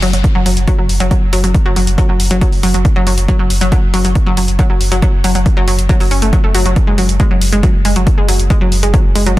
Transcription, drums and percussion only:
0.02 open hi-hat loud
0.13 closed hi-hat medium
0.24 kick loud
0.24 closed hi-hat medium
0.46 open hi-hat loud
0.57 closed hi-hat medium
0.68 kick loud
0.68 closed hi-hat medium
0.89 open hi-hat loud
1.00 closed hi-hat medium
1.11 kick loud
1.11 closed hi-hat medium
1.33 open hi-hat loud
1.44 closed hi-hat medium
1.54 kick loud
1.54 closed hi-hat medium
1.76 open hi-hat loud
1.87 closed hi-hat medium
1.98 kick loud
1.98 closed hi-hat medium
2.20 open hi-hat loud
2.31 closed hi-hat medium
2.41 kick loud
2.41 closed hi-hat medium
2.52 open hi-hat medium
2.63 open hi-hat loud
2.74 closed hi-hat medium
2.85 kick loud
2.85 closed hi-hat medium
3.07 open hi-hat loud
3.18 closed hi-hat medium
3.28 kick loud
3.28 closed hi-hat medium
3.50 open hi-hat loud
3.61 closed hi-hat medium
3.72 kick loud
3.72 closed hi-hat medium
3.94 open hi-hat loud
4.05 closed hi-hat medium
4.15 kick loud
4.15 closed hi-hat medium
4.37 open hi-hat loud
4.48 closed hi-hat medium
4.59 kick loud
4.59 closed hi-hat medium
4.81 open hi-hat loud
4.92 closed hi-hat medium
5.02 kick loud
5.02 closed hi-hat medium
5.24 open hi-hat loud
5.35 closed hi-hat medium
5.46 kick loud
5.46 closed hi-hat medium
5.68 open hi-hat loud
5.79 closed hi-hat medium
5.89 kick loud
5.89 closed hi-hat medium
6.00 open hi-hat medium
6.11 open hi-hat loud
6.22 closed hi-hat medium
6.33 kick loud
6.33 closed hi-hat medium
6.55 open hi-hat loud
6.66 closed hi-hat medium
6.76 kick loud
6.76 closed hi-hat medium
6.98 open hi-hat loud
7.09 closed hi-hat medium
7.20 kick loud
7.20 closed hi-hat medium
7.41 open hi-hat loud
7.52 closed hi-hat medium
7.63 kick loud
7.63 closed hi-hat medium
7.85 open hi-hat loud
7.96 closed hi-hat medium
8.07 kick loud
8.07 closed hi-hat medium
8.29 open hi-hat loud
8.39 closed hi-hat medium
8.50 kick loud
8.50 closed hi-hat medium
8.72 open hi-hat loud
8.83 closed hi-hat medium
8.94 kick loud
8.94 closed hi-hat medium
9.15 open hi-hat loud
9.26 closed hi-hat medium

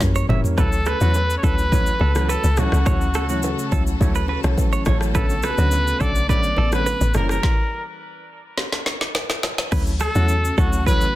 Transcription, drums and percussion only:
0.00 kick medium
0.00 snare medium
0.00 high bongo medium
0.00 shaker medium
0.15 shaker medium
0.29 mid tom medium
0.29 low bongo medium
0.29 low conga medium
0.44 floor tom medium
0.44 shaker medium
0.58 kick loud
0.58 cross-stick medium
0.58 low conga medium
0.58 shaker medium
0.72 shaker medium
0.86 cross-stick medium
0.86 low bongo medium
0.86 shaker medium
1.01 shaker medium
1.14 high bongo medium
1.14 shaker medium
1.30 shaker medium
1.43 kick medium
1.43 shaker soft
1.58 shaker medium
1.72 kick medium
1.72 low conga medium
1.72 shaker medium
1.86 shaker medium
1.99 high bongo medium
2.15 cross-stick medium
2.15 low bongo medium
2.15 shaker medium
2.29 high bongo medium
2.29 shaker medium
2.44 shaker medium
2.57 cross-stick medium
2.57 low bongo medium
2.57 low conga medium
2.57 shaker medium
2.72 cross-stick medium
2.72 shaker medium
2.86 kick loud
2.86 cross-stick loud
2.86 low conga medium
2.86 shaker medium
3.01 shaker medium
3.14 cross-stick loud
3.14 low bongo medium
3.14 shaker medium
3.29 shaker medium
3.43 high bongo medium
3.43 shaker medium
3.59 shaker medium
3.72 kick medium
3.72 shaker medium
3.87 shaker medium
4.01 kick medium
4.01 low conga medium
4.01 shaker medium
4.15 shaker medium
4.28 high bongo medium
4.44 cross-stick medium
4.44 low bongo medium
4.44 shaker medium
4.58 kick medium
4.58 high bongo medium
4.58 shaker medium
4.73 shaker medium
4.85 kick loud
4.85 cross-stick loud
4.85 low bongo medium
4.85 low conga medium
4.85 shaker medium
5.01 cross-stick medium
5.01 shaker medium
5.15 kick loud
5.15 cross-stick loud
5.15 low conga medium
5.15 shaker medium
5.30 shaker medium
5.43 cross-stick loud
5.43 low bongo medium
5.43 shaker medium
5.58 shaker medium
5.71 high bongo medium
5.71 shaker medium
5.87 shaker medium
6.01 kick medium
6.01 shaker medium
6.15 shaker medium
6.29 kick medium
6.29 low conga medium
6.29 shaker medium
6.43 shaker medium
6.57 high bongo medium
6.72 cross-stick medium
6.72 low bongo medium
6.72 shaker soft
6.86 high bongo medium
6.86 shaker medium
7.01 shaker medium
7.14 cross-stick medium
7.14 low bongo medium
7.14 low conga medium
7.14 shaker soft
7.29 cross-stick medium
7.29 shaker medium
7.43 kick loud
7.43 snare medium
8.58 snare medium
8.72 snare medium
8.86 snare medium
9.01 snare medium
9.15 snare medium
9.30 snare medium
9.43 snare loud
9.58 snare loud
9.72 kick loud
9.72 cross-stick loud
9.72 crash loud
9.72 shaker medium
9.87 shaker medium
10.00 cross-stick loud
10.00 shaker medium
10.15 shaker medium
10.29 shaker medium
10.45 shaker medium
10.58 kick medium
10.58 shaker soft
10.73 shaker medium
10.86 kick loud
10.86 shaker medium
11.01 shaker medium

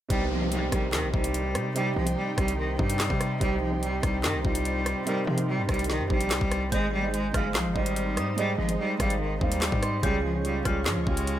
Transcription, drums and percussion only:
0.10 kick loud
0.10 closed hi-hat medium
0.52 closed hi-hat medium
0.72 kick loud
0.72 cross-stick loud
0.72 closed hi-hat medium
0.93 snare loud
0.93 clap loud
1.14 kick loud
1.24 closed hi-hat medium
1.34 closed hi-hat medium
1.55 cross-stick loud
1.55 closed hi-hat medium
1.76 closed hi-hat medium
2.07 closed hi-hat medium
2.38 kick loud
2.38 cross-stick loud
2.38 closed hi-hat medium
2.48 closed hi-hat medium
2.79 kick medium
2.90 closed hi-hat medium
3.00 snare loud
3.00 clap loud
3.00 closed hi-hat medium
3.10 kick loud
3.21 cross-stick loud
3.21 closed hi-hat medium
3.41 kick loud
3.41 closed hi-hat medium
3.83 closed hi-hat medium
4.03 kick loud
4.03 cross-stick loud
4.03 closed hi-hat medium
4.24 snare loud
4.24 clap medium
4.45 kick loud
4.55 closed hi-hat medium
4.65 closed hi-hat medium
4.86 cross-stick loud
4.86 closed hi-hat medium
5.07 closed hi-hat medium
5.38 closed hi-hat medium
5.69 kick loud
5.69 cross-stick loud
5.69 closed hi-hat soft
5.74 closed hi-hat medium
5.79 closed hi-hat medium
5.84 closed hi-hat medium
5.90 snare medium
6.10 kick loud
6.21 closed hi-hat medium
6.31 snare loud
6.31 clap loud
6.31 closed hi-hat medium
6.41 kick loud
6.51 cross-stick loud
6.51 closed hi-hat medium
6.72 kick loud
6.72 closed hi-hat medium
7.14 closed hi-hat medium
7.34 kick loud
7.34 cross-stick loud
7.34 closed hi-hat medium
7.55 snare loud
7.55 clap medium
7.76 kick loud
7.86 closed hi-hat loud
7.96 closed hi-hat medium
8.17 cross-stick loud
8.17 closed hi-hat medium
8.38 closed hi-hat medium
8.69 closed hi-hat medium
9.00 kick loud
9.00 cross-stick loud
9.00 closed hi-hat medium
9.10 closed hi-hat medium
9.41 kick loud
9.52 closed hi-hat medium
9.62 snare loud
9.62 clap loud
9.62 closed hi-hat medium
9.72 kick loud
9.83 cross-stick loud
9.83 closed hi-hat medium
10.03 kick loud
10.03 closed hi-hat medium
10.45 closed hi-hat medium
10.65 kick loud
10.65 cross-stick loud
10.65 closed hi-hat medium
10.86 snare loud
10.86 clap medium
11.07 kick loud
11.17 closed hi-hat medium
11.27 closed hi-hat medium

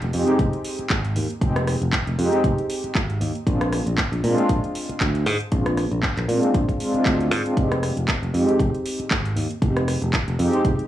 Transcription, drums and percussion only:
0.02 closed hi-hat soft
0.13 open hi-hat medium
0.27 closed hi-hat soft
0.39 kick loud
0.39 closed hi-hat medium
0.53 closed hi-hat soft
0.64 open hi-hat loud
0.79 closed hi-hat soft
0.90 kick loud
0.90 clap loud
0.90 closed hi-hat medium
1.05 closed hi-hat soft
1.16 open hi-hat medium
1.30 closed hi-hat soft
1.41 kick loud
1.41 closed hi-hat medium
1.56 cross-stick medium
1.56 closed hi-hat soft
1.67 cross-stick medium
1.67 open hi-hat medium
1.82 closed hi-hat soft
1.93 kick loud
1.93 clap loud
1.93 closed hi-hat medium
2.07 closed hi-hat soft
2.19 open hi-hat medium
2.33 closed hi-hat soft
2.44 kick loud
2.44 closed hi-hat medium
2.59 closed hi-hat soft
2.70 open hi-hat loud
2.84 closed hi-hat soft
2.95 kick loud
2.95 clap loud
2.95 closed hi-hat medium
3.10 closed hi-hat soft
3.21 open hi-hat medium
3.35 closed hi-hat soft
3.47 kick loud
3.47 closed hi-hat medium
3.61 cross-stick medium
3.61 closed hi-hat soft
3.73 cross-stick medium
3.73 open hi-hat medium
3.87 closed hi-hat soft
3.98 kick loud
3.98 clap loud
3.98 closed hi-hat medium
4.13 closed hi-hat soft
4.24 open hi-hat medium
4.38 closed hi-hat soft
4.49 kick loud
4.49 closed hi-hat medium
4.64 closed hi-hat soft
4.75 open hi-hat loud
4.89 closed hi-hat soft
5.00 kick loud
5.00 clap loud
5.00 closed hi-hat medium
5.15 closed hi-hat soft
5.26 open hi-hat medium
5.40 closed hi-hat soft
5.52 kick loud
5.52 closed hi-hat medium
5.66 cross-stick medium
5.66 closed hi-hat soft
5.77 cross-stick medium
5.77 open hi-hat medium
5.92 closed hi-hat soft
6.03 kick loud
6.03 clap loud
6.03 closed hi-hat medium
6.17 clap soft
6.17 closed hi-hat soft
6.29 open hi-hat medium
6.43 closed hi-hat soft
6.54 kick loud
6.54 closed hi-hat medium
6.69 kick medium
6.69 closed hi-hat soft
6.80 open hi-hat loud
6.95 closed hi-hat soft
7.06 kick loud
7.06 clap loud
7.06 closed hi-hat medium
7.20 closed hi-hat soft
7.32 open hi-hat medium
7.46 closed hi-hat soft
7.57 kick loud
7.57 closed hi-hat medium
7.72 cross-stick medium
7.72 closed hi-hat soft
7.83 cross-stick medium
7.83 open hi-hat loud
7.97 closed hi-hat soft
8.08 kick loud
8.08 clap loud
8.08 closed hi-hat loud
8.23 closed hi-hat soft
8.34 open hi-hat medium
8.49 closed hi-hat soft
8.60 kick loud
8.60 closed hi-hat medium
8.75 closed hi-hat soft
8.86 open hi-hat loud
9.00 closed hi-hat soft
9.11 kick loud
9.11 clap loud
9.11 closed hi-hat medium
9.26 closed hi-hat soft
9.37 open hi-hat medium
9.51 closed hi-hat soft
9.62 kick loud
9.62 closed hi-hat medium
9.77 cross-stick medium
9.77 closed hi-hat soft
9.88 cross-stick medium
9.88 open hi-hat loud
10.02 closed hi-hat soft
10.13 kick loud
10.13 clap loud
10.13 closed hi-hat medium
10.28 closed hi-hat soft
10.39 open hi-hat medium
10.53 closed hi-hat soft
10.65 kick loud
10.65 closed hi-hat medium
10.79 closed hi-hat soft

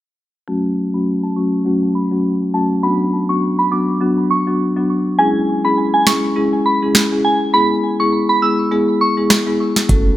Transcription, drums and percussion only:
6.07 finger snap medium
6.07 snare loud
6.95 finger snap medium
6.95 snare loud
9.30 finger snap medium
9.30 cross-stick loud
9.30 snare loud
9.76 snare medium
9.89 kick loud
9.89 closed hi-hat medium

